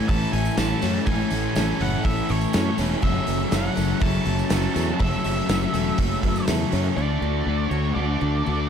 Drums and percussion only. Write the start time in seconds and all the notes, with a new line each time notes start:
0.09 kick, open hi-hat
0.21 tambourine
0.33 open hi-hat
0.45 tambourine
0.57 snare, open hi-hat, tambourine
0.82 snare, open hi-hat, tambourine
1.07 kick, open hi-hat
1.30 open hi-hat, tambourine
1.55 snare, open hi-hat, tambourine
1.81 open hi-hat
2.05 kick, open hi-hat
2.17 tambourine
2.29 open hi-hat
2.41 tambourine
2.53 snare, open hi-hat, tambourine
2.78 snare, open hi-hat, tambourine
3.03 kick, open hi-hat
3.27 open hi-hat, tambourine
3.52 snare, open hi-hat, tambourine
3.77 open hi-hat, tambourine
4.01 kick, open hi-hat
4.14 tambourine
4.26 open hi-hat
4.39 tambourine
4.50 snare, open hi-hat, tambourine
4.76 open hi-hat, tambourine
5.00 kick, open hi-hat
5.13 tambourine
5.24 open hi-hat, tambourine
5.49 snare, open hi-hat, tambourine
5.62 tambourine
5.74 open hi-hat, tambourine
5.98 kick, open hi-hat, tambourine
6.23 kick, open hi-hat
6.36 tambourine
6.47 snare, open hi-hat, tambourine
6.72 open hi-hat, tambourine
6.85 tambourine